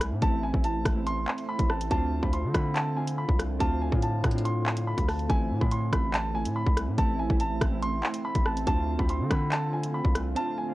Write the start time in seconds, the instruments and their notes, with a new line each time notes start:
Already playing: 808-style bass C2, synth keys A3 C4 E4, ambient pad A3 C4 E4
0.01 cross-stick, closed hi-hat
0.12 808-style bass A2
0.21 808-style bass A1, synth keys A3 C4 E4, grand piano A5, kick, closed hi-hat
0.43 grand piano G#5
0.53 808-style bass A1, synth keys A3 C4 E4, kick
0.64 grand piano A5, closed hi-hat
0.85 808-style bass A1, kick, cross-stick, closed hi-hat
0.95 synth keys A3 C4 E4
1.07 grand piano C6, closed hi-hat
1.28 clap
1.38 closed hi-hat
1.49 grand piano B5
1.59 808-style bass A1, kick, closed hi-hat
1.70 grand piano A5, cross-stick
1.81 closed hi-hat
1.90 808-style bass D2, ambient pad D3 F4, synth keys C4 D4 F4, grand piano A5, kick, closed hi-hat
2.22 808-style bass D2, synth keys C4 D4 F4, grand piano B5, kick
2.33 grand piano C6, closed hi-hat
2.44 808-style bass D3
2.54 808-style bass D3, synth keys C4 D4 F4, grand piano B5, kick, cross-stick, closed hi-hat
2.76 grand piano A5, clap, closed hi-hat
2.95 synth keys C4 D4 F4, grand piano G#5
3.07 closed hi-hat
3.18 grand piano B5
3.29 808-style bass C2, kick
3.39 cross-stick, closed hi-hat
3.59 808-style bass D2, synth keys C4 D4 F4, grand piano A5, kick, closed hi-hat
3.81 grand piano G#5
3.91 808-style bass A2, synth keys C4 D4 F4, kick
4.02 grand piano A5, closed hi-hat
4.24 808-style bass A2, kick, cross-stick, closed hi-hat
4.31 synth keys C4 D4, closed hi-hat
4.36 synth keys F4, closed hi-hat
4.45 grand piano C6, closed hi-hat
4.66 clap
4.77 closed hi-hat
4.87 grand piano B5
4.98 808-style bass D2, kick, closed hi-hat
5.08 grand piano A5, cross-stick, open hi-hat
5.19 closed hi-hat
5.28 808-style bass A1, synth keys A3 C4 E4, ambient pad C4 E4, grand piano G#5, kick, closed hi-hat
5.50 808-style bass A2
5.60 808-style bass A2, synth keys A3 C4 E4, grand piano B5, kick
5.71 grand piano C6, closed hi-hat
5.91 808-style bass A1, synth keys A3 C4 E4, grand piano B5, kick, cross-stick, closed hi-hat
6.14 grand piano A5, clap, closed hi-hat
6.34 synth keys A3 C4 E4, grand piano G#5
6.45 808-style bass A2, closed hi-hat
6.56 grand piano B5
6.67 808-style bass C2, kick
6.77 cross-stick, closed hi-hat
6.88 808-style bass A2
6.97 808-style bass A1, synth keys A3 C4 E4, grand piano A5, kick, closed hi-hat
7.19 grand piano G#5
7.29 808-style bass A1, synth keys A3 C4 E4, kick
7.40 grand piano A5, closed hi-hat
7.62 808-style bass A1, kick, cross-stick, closed hi-hat
7.71 synth keys A3 C4 E4
7.83 grand piano C6, closed hi-hat
8.04 clap
8.14 closed hi-hat
8.25 grand piano B5
8.35 808-style bass A1, kick, closed hi-hat
8.46 grand piano A5, cross-stick
8.57 closed hi-hat
8.66 808-style bass D2, ambient pad D3 A3 F4, synth keys C4 D4 F4, grand piano A5, kick, closed hi-hat
8.98 808-style bass D2, synth keys C4 D4 F4, grand piano B5, kick
9.09 grand piano C6, closed hi-hat
9.20 808-style bass D3
9.30 808-style bass D3, synth keys C4 D4 F4, grand piano B5, kick, cross-stick, closed hi-hat
9.52 grand piano A5, clap, closed hi-hat
9.72 synth keys C4 D4 F4, grand piano G#5
9.83 closed hi-hat
9.94 grand piano B5
10.05 808-style bass C2, kick
10.15 cross-stick, closed hi-hat
10.35 synth keys C4 D4 F4, grand piano A5, closed hi-hat
10.58 grand piano G#5
10.67 synth keys C4 D4 F4